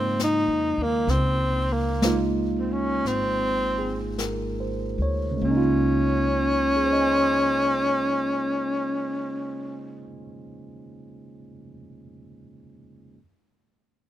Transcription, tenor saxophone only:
Already playing: C4
0.24 D#4
0.83 A#3
1.11 C4
1.73 A#3
2.59 C4
2.72 C#4
3.07 C4
5.44 C#4

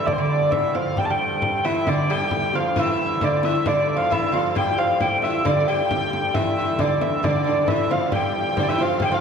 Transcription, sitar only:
1.64 E4
1.87 D4
2.10 G4
2.54 F4
2.77 E4
3.22 D4
3.45 E4
3.67 D4
3.97 F4
4.10 E4
4.33 F4
4.56 G4
4.78 F4
5.01 G4
5.24 E4
5.45 D4
5.69 G4
6.36 E4
6.58 E4
6.80 D4
7.25 D4
7.47 D4
7.70 E4
7.92 F4
8.15 G4
8.59 D4
8.69 E4
8.81 F4
9.02 G4
9.11 F4

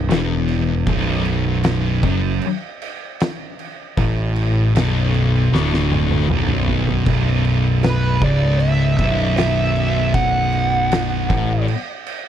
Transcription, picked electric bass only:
0.10 E1
0.87 B0
2.03 F#1
3.98 A1
4.74 B0
5.52 D1
6.28 B0
7.07 B0
8.22 C#1
8.99 B0
11.29 A1

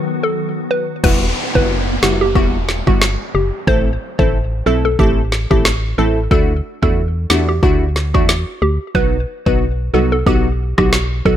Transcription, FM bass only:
1.04 E1
1.55 F#1
2.03 F#1
2.35 E1
2.87 G1
3.35 F#1
3.67 A1
4.19 A1
4.66 B1
4.99 A1
5.51 A1
5.98 A1
6.31 D2
6.83 E2
7.30 E2
7.63 D2
8.15 E2
8.62 D2
8.95 B1
9.46 B1
9.94 C2
10.26 B1
10.78 B1
11.26 B1

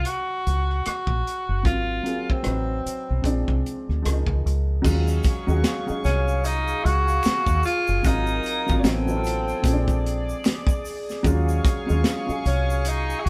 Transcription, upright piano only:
Already playing: F#3 G#3 C#4 D#4 F4
1.63 F#3 A#3 C4 F4
2.03 F#3 A#3 C4 G#4
2.43 F#3 C4 D#4 B4
3.22 F3 G#3 C4 D4
4.02 F3 G#3 A#3 C#4
4.12 D#4
4.82 F#3 G#3 C#4 F4
5.47 F#3 G#3 C#4 F#4
5.86 F#3 G#3 C#4 D#4
8.03 F#3 A#3 C4 F4
8.66 F#3 A#3 C4
8.70 F4
8.83 F#3 B3 C4 D#4
9.06 F#3 C4 E4 B4
9.17 F4
9.62 F3 G#3 C4 C#4
9.73 D4
11.23 F#3 G#3 C#4 F4
11.87 F#3 G#3 C#4 F4
12.27 F#3 G#3 C#4
12.31 G#4

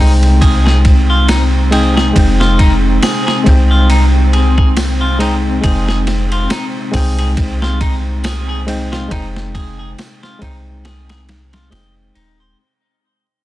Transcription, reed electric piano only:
Already playing: G#3 C4
0.00 D#4 G5
1.71 G#3 C4 D#4 G5
2.13 G#3 C4 D#4
2.19 G5
3.44 G#3 C4 D#4
3.49 G5
5.19 G#3 C4 D#4 G5
5.61 G#3 C4 D#4
5.66 G5
6.92 G#3 C4 D#4
6.96 G5
8.67 G#3 C4 D#4 G5
9.09 G#3 C4 D#4
9.14 G5
10.39 G#3 C4 D#4
10.44 G5
11.70 G#3 C4 D#4 G5

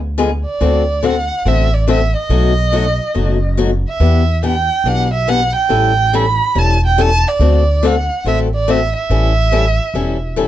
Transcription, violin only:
0.46 D5
1.05 F#5
1.48 E5
1.74 D5
1.90 E5
2.17 D#5
3.88 E5
4.45 G5
4.88 F#5
5.14 E5
5.29 F#5
5.56 G5
6.15 B5
6.58 A5
6.86 G5
7.01 A5
7.28 D5
7.86 F#5
8.27 E5
8.54 D5
8.70 E5
8.96 E5

